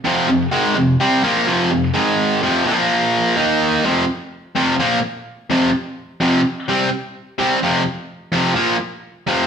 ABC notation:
X:1
M:4/4
L:1/8
Q:1/4=127
K:Fm
V:1 name="Distorted electric guitar" clef=bass
[F,,C,F,] [F,,C,] [A,,E,A,] [F,,C,] [C,G,C] [B,,F,B,] [F,,C,F,] [F,,C,] | [A,,E,A,]2 [F,,C,F,] [B,,F,B,]3 [E,B,E]2 | [F,,C,F,] z2 [F,,C,F,] [B,,F,B,] z2 [F,,C,F,] | z2 [F,,C,F,] z [C,G,C] z2 [C,G,C] |
[F,,C,F,] z2 [F,,C,F,] [B,,F,B,] z2 [F,,C,F,] |]